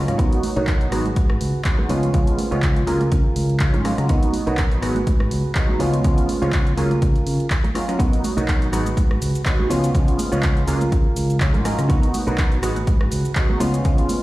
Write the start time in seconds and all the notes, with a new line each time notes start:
0.08 G#2 F#3 G#3 A#3 C#4 F4, cross-stick, closed hi-hat, shaker
0.18 B1 F#3 B3 D#4 F#4 A#4 B4, kick, closed hi-hat
0.33 closed hi-hat
0.43 open hi-hat, high conga, shaker
0.56 B1 F#3 B3 D#4 F#4 A#4 C#5, closed hi-hat, shaker
0.67 kick, clap, closed hi-hat
0.81 closed hi-hat
0.92 G#1 F#3 G#3 B3 D#4 F#4 G#4 B4, cross-stick, open hi-hat
1.05 closed hi-hat, high conga, shaker
1.16 G#2, kick, closed hi-hat, shaker
1.30 cross-stick
1.41 C#2, open hi-hat, shaker
1.54 shaker
1.65 F#3 G#3 B3 D#4 F#4, kick, clap, closed hi-hat
1.78 muted clean electric guitar stroke, high conga, low conga
1.89 C#2 F3 G#3 B3 C#4 F4 B4 C#5, open hi-hat, shaker
2.02 closed hi-hat, shaker
2.13 C#2 F3 G#3 B3 C#4 F4, kick, closed hi-hat
2.27 closed hi-hat
2.38 open hi-hat, high conga, shaker
2.51 C#2 F3 G#3 B3 C#4 F4 B4 C#5, closed hi-hat, shaker
2.62 kick, clap, closed hi-hat
2.76 closed hi-hat
2.86 C#2 F#3 G#3 A#3 C#4 F4 G#4 A#4, open hi-hat, shaker
3.00 closed hi-hat, high conga, shaker
3.11 C#3, kick, closed hi-hat, shaker
3.24 shaker
3.36 C#2, open hi-hat, shaker
3.49 closed hi-hat, shaker
3.60 F#3 G#3 A#3 C#4 F4, kick, clap, closed hi-hat
3.74 G#2, muted clean electric guitar stroke, closed hi-hat, high conga, low conga
3.84 F#3 G#3 A#3 C#4 F4, muted clean electric guitar stroke, cross-stick, open hi-hat, shaker
3.98 C#3, cross-stick, closed hi-hat, shaker
4.09 B1 F#3 B3 D#4 F#4 A#4 B4, kick, closed hi-hat
4.23 closed hi-hat
4.33 open hi-hat, high conga, shaker
4.46 B1 F#3 B3 D#4 F#4 A#4 B4, closed hi-hat, shaker
4.57 kick, clap, closed hi-hat
4.71 closed hi-hat
4.81 G#1 F#3 G#3 B3 D#4 F#4 G#4 B4, cross-stick, open hi-hat
4.95 closed hi-hat, high conga, shaker
5.07 G#2, kick, closed hi-hat
5.20 cross-stick, shaker
5.31 C#2, open hi-hat, shaker
5.44 shaker
5.55 F#3 G#3 B3 D#4 F#4, kick, clap, closed hi-hat
5.68 muted clean electric guitar stroke, high conga, low conga
5.79 C#2 F3 G#3 B3 C#4 F4 B4 C#5, open hi-hat, shaker
5.93 closed hi-hat, shaker
6.04 C#2 F3 G#3 B3 C#4 F4, kick, closed hi-hat
6.18 closed hi-hat, shaker
6.29 open hi-hat, high conga, shaker
6.42 C#2 F3 G#3 B3 C#4 F4 B4 C#5, closed hi-hat, shaker
6.53 kick, clap, closed hi-hat
6.67 closed hi-hat
6.77 C#2 F#3 G#3 A#3 C#4 F4 G#4 A#4, open hi-hat, shaker
6.91 closed hi-hat, high conga, shaker
7.02 C#3, kick, closed hi-hat, shaker
7.15 closed hi-hat, shaker
7.26 C#3, open hi-hat, shaker
7.40 closed hi-hat, shaker
7.50 kick, clap, closed hi-hat
7.64 muted clean electric guitar stroke, closed hi-hat, high conga, low conga, shaker
7.75 F#3 G#3 A#3 C#4 F4, muted clean electric guitar stroke, cross-stick, open hi-hat, shaker
7.88 F#3 G#3 A#3 C#4 F4, cross-stick, closed hi-hat, shaker
7.99 B1 F#3 B3 D#4 F#4 A#4 B4, kick, closed hi-hat, cabasa
8.13 closed hi-hat
8.23 open hi-hat, high conga, cabasa, shaker
8.37 B1 F#3 B3 D#4 F#4 A#4 C#5, closed hi-hat, cabasa, shaker
8.48 kick, clap, closed hi-hat, cabasa
8.62 closed hi-hat
8.72 G#1 F#3 G#3 B3 D#4 F#4 G#4 B4, cross-stick, open hi-hat, cabasa, shaker
8.86 closed hi-hat, high conga, cabasa, shaker
8.97 G#2, kick, closed hi-hat, cabasa, shaker
9.11 cross-stick
9.21 C#2, open hi-hat, cabasa, shaker
9.35 cabasa, shaker
9.45 F#3 G#3 B3 D#4 F#4, kick, clap, closed hi-hat, cabasa, shaker
9.59 muted clean electric guitar stroke, high conga, low conga
9.70 C#2 F3 G#3 B3 C#4 F4 B4 C#5, open hi-hat, cabasa, shaker
9.84 closed hi-hat, cabasa, shaker
9.94 C#2 F3 G#3 B3 C#4 F4, kick, closed hi-hat, cabasa
10.08 closed hi-hat
10.19 open hi-hat, high conga, cabasa, shaker
10.32 C#2 F3 G#3 B3 C#4 F4 B4 C#5, closed hi-hat, cabasa, shaker
10.43 kick, clap, closed hi-hat, cabasa
10.57 closed hi-hat
10.67 C#2 F#3 G#3 A#3 C#4 F4 G#4 A#4, open hi-hat, cabasa, shaker
10.81 closed hi-hat, high conga, cabasa, shaker
10.92 C#3, kick, closed hi-hat, cabasa, shaker
11.06 shaker
11.16 C#2, open hi-hat, cabasa, shaker
11.30 closed hi-hat, cabasa, shaker
11.40 F#3 G#3 A#3 C#4 F4, kick, clap, closed hi-hat, cabasa
11.54 G#2, muted clean electric guitar stroke, closed hi-hat, high conga, low conga
11.65 F#3 G#3 A#3 C#4 F4, muted clean electric guitar stroke, cross-stick, open hi-hat, cabasa, shaker
11.78 C#3, cross-stick, closed hi-hat, cabasa, shaker
11.89 B1 F#3 B3 D#4 F#4 A#4 B4, kick, closed hi-hat, cabasa
12.03 closed hi-hat
12.14 open hi-hat, high conga, cabasa, shaker
12.27 B1 F#3 B3 D#4 F#4 A#4 B4, closed hi-hat, cabasa, shaker
12.38 kick, clap, closed hi-hat, cabasa
12.52 closed hi-hat
12.62 G#1 F#3 G#3 B3 D#4 F#4 G#4 B4, cross-stick, open hi-hat, cabasa, shaker
12.76 closed hi-hat, high conga, cabasa, shaker
12.87 G#2, kick, closed hi-hat, cabasa, shaker
13.01 cross-stick, shaker
13.12 C#2, open hi-hat, cabasa, shaker
13.25 cabasa, shaker
13.36 F#3 G#3 B3 D#4 F#4, kick, clap, closed hi-hat, cabasa
13.49 muted clean electric guitar stroke, high conga, low conga
13.60 C#2 F3 G#3 B3 C#4 F4 B4 C#5, open hi-hat, cabasa, shaker
13.74 closed hi-hat, cabasa, shaker
13.84 C#2 F3 G#3 B3 C#4 F4, kick, closed hi-hat, cabasa
13.98 closed hi-hat
14.09 open hi-hat, high conga, cabasa, shaker